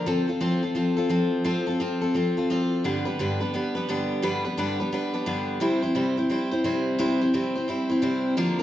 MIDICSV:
0, 0, Header, 1, 2, 480
1, 0, Start_track
1, 0, Key_signature, 0, "major"
1, 0, Tempo, 345821
1, 96, Time_signature, 4, 2, 24, 8
1, 11977, End_track
2, 0, Start_track
2, 0, Title_t, "Steel-string acoustic guitar"
2, 0, Program_c, 0, 25
2, 87, Note_on_c, 0, 53, 81
2, 91, Note_on_c, 0, 60, 78
2, 102, Note_on_c, 0, 65, 85
2, 103, Note_on_c, 0, 69, 88
2, 368, Note_off_c, 0, 69, 0
2, 384, Note_on_c, 0, 69, 57
2, 385, Note_off_c, 0, 65, 0
2, 395, Note_off_c, 0, 53, 0
2, 397, Note_off_c, 0, 60, 0
2, 401, Note_on_c, 0, 65, 52
2, 413, Note_on_c, 0, 60, 42
2, 553, Note_off_c, 0, 60, 0
2, 554, Note_off_c, 0, 65, 0
2, 562, Note_on_c, 0, 53, 74
2, 565, Note_off_c, 0, 69, 0
2, 569, Note_on_c, 0, 60, 85
2, 571, Note_on_c, 0, 65, 83
2, 582, Note_on_c, 0, 69, 88
2, 854, Note_off_c, 0, 69, 0
2, 870, Note_off_c, 0, 65, 0
2, 871, Note_on_c, 0, 69, 50
2, 873, Note_off_c, 0, 53, 0
2, 876, Note_off_c, 0, 60, 0
2, 887, Note_on_c, 0, 65, 42
2, 898, Note_on_c, 0, 60, 42
2, 1033, Note_off_c, 0, 60, 0
2, 1039, Note_on_c, 0, 53, 61
2, 1043, Note_off_c, 0, 65, 0
2, 1050, Note_on_c, 0, 60, 67
2, 1053, Note_off_c, 0, 69, 0
2, 1060, Note_on_c, 0, 65, 63
2, 1072, Note_on_c, 0, 69, 67
2, 1325, Note_off_c, 0, 69, 0
2, 1341, Note_off_c, 0, 65, 0
2, 1342, Note_on_c, 0, 69, 57
2, 1351, Note_off_c, 0, 53, 0
2, 1351, Note_off_c, 0, 60, 0
2, 1358, Note_on_c, 0, 65, 55
2, 1367, Note_on_c, 0, 60, 46
2, 1511, Note_off_c, 0, 60, 0
2, 1518, Note_on_c, 0, 53, 70
2, 1520, Note_off_c, 0, 65, 0
2, 1523, Note_off_c, 0, 69, 0
2, 1528, Note_on_c, 0, 60, 86
2, 1537, Note_on_c, 0, 65, 70
2, 1540, Note_on_c, 0, 69, 70
2, 1988, Note_off_c, 0, 53, 0
2, 1992, Note_off_c, 0, 60, 0
2, 2001, Note_off_c, 0, 65, 0
2, 2004, Note_off_c, 0, 69, 0
2, 2004, Note_on_c, 0, 53, 84
2, 2008, Note_on_c, 0, 60, 85
2, 2018, Note_on_c, 0, 65, 88
2, 2021, Note_on_c, 0, 69, 93
2, 2297, Note_off_c, 0, 69, 0
2, 2313, Note_on_c, 0, 69, 62
2, 2315, Note_off_c, 0, 53, 0
2, 2315, Note_off_c, 0, 65, 0
2, 2317, Note_off_c, 0, 60, 0
2, 2332, Note_on_c, 0, 65, 48
2, 2344, Note_on_c, 0, 60, 45
2, 2481, Note_off_c, 0, 60, 0
2, 2494, Note_on_c, 0, 53, 67
2, 2495, Note_off_c, 0, 65, 0
2, 2496, Note_off_c, 0, 69, 0
2, 2498, Note_on_c, 0, 60, 83
2, 2511, Note_on_c, 0, 65, 87
2, 2516, Note_on_c, 0, 69, 83
2, 2779, Note_off_c, 0, 69, 0
2, 2795, Note_on_c, 0, 69, 57
2, 2798, Note_off_c, 0, 65, 0
2, 2800, Note_off_c, 0, 53, 0
2, 2802, Note_off_c, 0, 60, 0
2, 2814, Note_on_c, 0, 65, 49
2, 2824, Note_on_c, 0, 60, 42
2, 2972, Note_off_c, 0, 60, 0
2, 2977, Note_off_c, 0, 69, 0
2, 2977, Note_on_c, 0, 53, 69
2, 2980, Note_off_c, 0, 65, 0
2, 2989, Note_on_c, 0, 60, 68
2, 2997, Note_on_c, 0, 65, 69
2, 3008, Note_on_c, 0, 69, 72
2, 3272, Note_off_c, 0, 69, 0
2, 3282, Note_off_c, 0, 53, 0
2, 3282, Note_off_c, 0, 65, 0
2, 3288, Note_off_c, 0, 60, 0
2, 3289, Note_on_c, 0, 69, 58
2, 3299, Note_on_c, 0, 65, 53
2, 3313, Note_on_c, 0, 60, 51
2, 3458, Note_off_c, 0, 60, 0
2, 3464, Note_off_c, 0, 69, 0
2, 3469, Note_on_c, 0, 53, 77
2, 3470, Note_off_c, 0, 65, 0
2, 3475, Note_on_c, 0, 60, 74
2, 3485, Note_on_c, 0, 65, 80
2, 3489, Note_on_c, 0, 69, 91
2, 3944, Note_on_c, 0, 43, 83
2, 3947, Note_off_c, 0, 53, 0
2, 3949, Note_off_c, 0, 60, 0
2, 3951, Note_on_c, 0, 50, 73
2, 3954, Note_off_c, 0, 65, 0
2, 3954, Note_on_c, 0, 55, 92
2, 3956, Note_off_c, 0, 69, 0
2, 3957, Note_on_c, 0, 59, 88
2, 3960, Note_on_c, 0, 62, 97
2, 3965, Note_on_c, 0, 71, 83
2, 4219, Note_off_c, 0, 71, 0
2, 4232, Note_off_c, 0, 62, 0
2, 4236, Note_on_c, 0, 71, 57
2, 4241, Note_off_c, 0, 59, 0
2, 4246, Note_off_c, 0, 43, 0
2, 4249, Note_on_c, 0, 62, 51
2, 4250, Note_off_c, 0, 50, 0
2, 4251, Note_off_c, 0, 55, 0
2, 4258, Note_on_c, 0, 59, 48
2, 4268, Note_on_c, 0, 55, 45
2, 4419, Note_off_c, 0, 71, 0
2, 4422, Note_off_c, 0, 55, 0
2, 4423, Note_off_c, 0, 59, 0
2, 4425, Note_off_c, 0, 62, 0
2, 4430, Note_on_c, 0, 50, 80
2, 4432, Note_on_c, 0, 43, 76
2, 4439, Note_on_c, 0, 55, 77
2, 4439, Note_on_c, 0, 59, 71
2, 4444, Note_on_c, 0, 62, 80
2, 4450, Note_on_c, 0, 71, 81
2, 4708, Note_off_c, 0, 71, 0
2, 4719, Note_off_c, 0, 62, 0
2, 4725, Note_on_c, 0, 71, 52
2, 4729, Note_off_c, 0, 50, 0
2, 4730, Note_off_c, 0, 43, 0
2, 4734, Note_off_c, 0, 55, 0
2, 4734, Note_off_c, 0, 59, 0
2, 4736, Note_on_c, 0, 62, 47
2, 4748, Note_on_c, 0, 59, 48
2, 4755, Note_on_c, 0, 55, 45
2, 4892, Note_off_c, 0, 55, 0
2, 4899, Note_off_c, 0, 59, 0
2, 4904, Note_off_c, 0, 71, 0
2, 4909, Note_off_c, 0, 62, 0
2, 4909, Note_on_c, 0, 55, 68
2, 4916, Note_on_c, 0, 59, 66
2, 4930, Note_on_c, 0, 62, 72
2, 4934, Note_on_c, 0, 71, 75
2, 5187, Note_off_c, 0, 71, 0
2, 5204, Note_on_c, 0, 71, 59
2, 5207, Note_off_c, 0, 62, 0
2, 5209, Note_off_c, 0, 55, 0
2, 5213, Note_off_c, 0, 59, 0
2, 5224, Note_on_c, 0, 62, 61
2, 5227, Note_on_c, 0, 59, 46
2, 5236, Note_on_c, 0, 55, 56
2, 5383, Note_off_c, 0, 71, 0
2, 5390, Note_off_c, 0, 55, 0
2, 5391, Note_off_c, 0, 59, 0
2, 5393, Note_off_c, 0, 62, 0
2, 5393, Note_on_c, 0, 43, 80
2, 5401, Note_on_c, 0, 50, 75
2, 5407, Note_on_c, 0, 55, 80
2, 5408, Note_on_c, 0, 59, 78
2, 5412, Note_on_c, 0, 62, 82
2, 5416, Note_on_c, 0, 71, 69
2, 5846, Note_off_c, 0, 43, 0
2, 5850, Note_off_c, 0, 50, 0
2, 5858, Note_off_c, 0, 59, 0
2, 5860, Note_off_c, 0, 62, 0
2, 5862, Note_on_c, 0, 43, 89
2, 5865, Note_off_c, 0, 71, 0
2, 5867, Note_on_c, 0, 50, 81
2, 5868, Note_off_c, 0, 55, 0
2, 5874, Note_on_c, 0, 55, 88
2, 5874, Note_on_c, 0, 59, 90
2, 5877, Note_on_c, 0, 62, 92
2, 5881, Note_on_c, 0, 71, 99
2, 6153, Note_off_c, 0, 71, 0
2, 6164, Note_off_c, 0, 62, 0
2, 6166, Note_off_c, 0, 43, 0
2, 6168, Note_off_c, 0, 50, 0
2, 6169, Note_on_c, 0, 71, 59
2, 6172, Note_off_c, 0, 55, 0
2, 6172, Note_off_c, 0, 59, 0
2, 6181, Note_on_c, 0, 62, 49
2, 6188, Note_on_c, 0, 59, 42
2, 6202, Note_on_c, 0, 55, 48
2, 6345, Note_off_c, 0, 55, 0
2, 6346, Note_off_c, 0, 71, 0
2, 6347, Note_off_c, 0, 59, 0
2, 6349, Note_on_c, 0, 43, 74
2, 6352, Note_off_c, 0, 62, 0
2, 6354, Note_on_c, 0, 50, 85
2, 6361, Note_on_c, 0, 55, 85
2, 6364, Note_on_c, 0, 59, 76
2, 6366, Note_on_c, 0, 62, 88
2, 6371, Note_on_c, 0, 71, 90
2, 6642, Note_off_c, 0, 71, 0
2, 6650, Note_off_c, 0, 43, 0
2, 6651, Note_off_c, 0, 62, 0
2, 6652, Note_off_c, 0, 50, 0
2, 6656, Note_off_c, 0, 55, 0
2, 6657, Note_off_c, 0, 59, 0
2, 6659, Note_on_c, 0, 71, 56
2, 6667, Note_on_c, 0, 62, 43
2, 6680, Note_on_c, 0, 59, 47
2, 6684, Note_on_c, 0, 55, 44
2, 6817, Note_off_c, 0, 55, 0
2, 6819, Note_off_c, 0, 59, 0
2, 6831, Note_off_c, 0, 71, 0
2, 6833, Note_on_c, 0, 55, 62
2, 6835, Note_off_c, 0, 62, 0
2, 6836, Note_on_c, 0, 59, 76
2, 6852, Note_on_c, 0, 62, 68
2, 6856, Note_on_c, 0, 71, 76
2, 7112, Note_off_c, 0, 71, 0
2, 7120, Note_off_c, 0, 62, 0
2, 7128, Note_on_c, 0, 71, 58
2, 7129, Note_off_c, 0, 59, 0
2, 7132, Note_off_c, 0, 55, 0
2, 7136, Note_on_c, 0, 62, 58
2, 7146, Note_on_c, 0, 59, 45
2, 7151, Note_on_c, 0, 55, 45
2, 7295, Note_off_c, 0, 55, 0
2, 7299, Note_off_c, 0, 59, 0
2, 7301, Note_off_c, 0, 62, 0
2, 7303, Note_on_c, 0, 43, 80
2, 7305, Note_on_c, 0, 50, 85
2, 7306, Note_off_c, 0, 71, 0
2, 7311, Note_on_c, 0, 55, 76
2, 7315, Note_on_c, 0, 59, 78
2, 7318, Note_on_c, 0, 62, 80
2, 7320, Note_on_c, 0, 71, 76
2, 7768, Note_off_c, 0, 55, 0
2, 7769, Note_off_c, 0, 50, 0
2, 7774, Note_on_c, 0, 48, 82
2, 7782, Note_off_c, 0, 59, 0
2, 7784, Note_off_c, 0, 43, 0
2, 7785, Note_on_c, 0, 55, 83
2, 7788, Note_off_c, 0, 62, 0
2, 7788, Note_on_c, 0, 60, 82
2, 7793, Note_off_c, 0, 71, 0
2, 7793, Note_on_c, 0, 64, 95
2, 7799, Note_on_c, 0, 72, 86
2, 8065, Note_off_c, 0, 72, 0
2, 8081, Note_off_c, 0, 64, 0
2, 8082, Note_off_c, 0, 48, 0
2, 8082, Note_on_c, 0, 72, 59
2, 8087, Note_off_c, 0, 55, 0
2, 8089, Note_off_c, 0, 60, 0
2, 8098, Note_on_c, 0, 64, 52
2, 8113, Note_on_c, 0, 60, 43
2, 8253, Note_off_c, 0, 60, 0
2, 8256, Note_off_c, 0, 64, 0
2, 8256, Note_on_c, 0, 48, 85
2, 8262, Note_off_c, 0, 72, 0
2, 8265, Note_on_c, 0, 55, 85
2, 8270, Note_on_c, 0, 60, 83
2, 8273, Note_on_c, 0, 64, 79
2, 8278, Note_on_c, 0, 72, 84
2, 8550, Note_off_c, 0, 72, 0
2, 8561, Note_off_c, 0, 64, 0
2, 8562, Note_off_c, 0, 48, 0
2, 8566, Note_on_c, 0, 72, 50
2, 8567, Note_off_c, 0, 55, 0
2, 8569, Note_off_c, 0, 60, 0
2, 8578, Note_on_c, 0, 64, 52
2, 8591, Note_on_c, 0, 60, 41
2, 8730, Note_off_c, 0, 60, 0
2, 8737, Note_on_c, 0, 55, 63
2, 8741, Note_off_c, 0, 64, 0
2, 8744, Note_off_c, 0, 72, 0
2, 8747, Note_on_c, 0, 60, 66
2, 8758, Note_on_c, 0, 64, 69
2, 8766, Note_on_c, 0, 72, 74
2, 9024, Note_off_c, 0, 72, 0
2, 9038, Note_off_c, 0, 64, 0
2, 9040, Note_on_c, 0, 72, 69
2, 9043, Note_off_c, 0, 55, 0
2, 9047, Note_off_c, 0, 60, 0
2, 9054, Note_on_c, 0, 64, 54
2, 9066, Note_on_c, 0, 60, 50
2, 9209, Note_off_c, 0, 60, 0
2, 9215, Note_off_c, 0, 64, 0
2, 9218, Note_on_c, 0, 48, 78
2, 9220, Note_on_c, 0, 55, 79
2, 9221, Note_off_c, 0, 72, 0
2, 9226, Note_on_c, 0, 60, 81
2, 9232, Note_on_c, 0, 64, 70
2, 9236, Note_on_c, 0, 72, 79
2, 9678, Note_off_c, 0, 48, 0
2, 9685, Note_off_c, 0, 55, 0
2, 9691, Note_off_c, 0, 60, 0
2, 9691, Note_off_c, 0, 64, 0
2, 9695, Note_on_c, 0, 48, 93
2, 9696, Note_off_c, 0, 72, 0
2, 9702, Note_on_c, 0, 55, 93
2, 9708, Note_on_c, 0, 60, 99
2, 9708, Note_on_c, 0, 64, 89
2, 9713, Note_on_c, 0, 72, 108
2, 9995, Note_off_c, 0, 72, 0
2, 10001, Note_off_c, 0, 48, 0
2, 10003, Note_off_c, 0, 64, 0
2, 10004, Note_off_c, 0, 55, 0
2, 10007, Note_off_c, 0, 60, 0
2, 10011, Note_on_c, 0, 72, 63
2, 10020, Note_on_c, 0, 64, 49
2, 10035, Note_on_c, 0, 60, 50
2, 10173, Note_off_c, 0, 60, 0
2, 10181, Note_off_c, 0, 72, 0
2, 10182, Note_off_c, 0, 64, 0
2, 10183, Note_on_c, 0, 48, 80
2, 10186, Note_on_c, 0, 55, 83
2, 10190, Note_on_c, 0, 60, 89
2, 10198, Note_on_c, 0, 72, 90
2, 10199, Note_on_c, 0, 64, 82
2, 10468, Note_off_c, 0, 72, 0
2, 10484, Note_off_c, 0, 48, 0
2, 10485, Note_on_c, 0, 72, 54
2, 10486, Note_off_c, 0, 55, 0
2, 10486, Note_off_c, 0, 64, 0
2, 10488, Note_off_c, 0, 60, 0
2, 10503, Note_on_c, 0, 64, 46
2, 10514, Note_on_c, 0, 60, 47
2, 10651, Note_off_c, 0, 60, 0
2, 10658, Note_on_c, 0, 55, 69
2, 10662, Note_off_c, 0, 64, 0
2, 10662, Note_off_c, 0, 72, 0
2, 10668, Note_on_c, 0, 60, 72
2, 10678, Note_on_c, 0, 64, 72
2, 10683, Note_on_c, 0, 72, 77
2, 10941, Note_off_c, 0, 72, 0
2, 10953, Note_off_c, 0, 64, 0
2, 10958, Note_on_c, 0, 72, 63
2, 10961, Note_off_c, 0, 55, 0
2, 10966, Note_off_c, 0, 60, 0
2, 10970, Note_on_c, 0, 64, 59
2, 10984, Note_on_c, 0, 60, 51
2, 11123, Note_off_c, 0, 60, 0
2, 11128, Note_off_c, 0, 64, 0
2, 11130, Note_on_c, 0, 48, 77
2, 11133, Note_off_c, 0, 72, 0
2, 11134, Note_on_c, 0, 55, 86
2, 11140, Note_on_c, 0, 60, 79
2, 11144, Note_on_c, 0, 64, 84
2, 11150, Note_on_c, 0, 72, 89
2, 11609, Note_off_c, 0, 48, 0
2, 11615, Note_off_c, 0, 55, 0
2, 11615, Note_on_c, 0, 50, 87
2, 11618, Note_off_c, 0, 60, 0
2, 11621, Note_off_c, 0, 64, 0
2, 11621, Note_on_c, 0, 53, 88
2, 11622, Note_off_c, 0, 72, 0
2, 11624, Note_on_c, 0, 58, 96
2, 11628, Note_on_c, 0, 70, 106
2, 11630, Note_on_c, 0, 62, 106
2, 11903, Note_off_c, 0, 70, 0
2, 11915, Note_off_c, 0, 62, 0
2, 11918, Note_off_c, 0, 50, 0
2, 11920, Note_on_c, 0, 70, 60
2, 11921, Note_off_c, 0, 53, 0
2, 11923, Note_off_c, 0, 58, 0
2, 11932, Note_on_c, 0, 62, 56
2, 11977, Note_off_c, 0, 62, 0
2, 11977, Note_off_c, 0, 70, 0
2, 11977, End_track
0, 0, End_of_file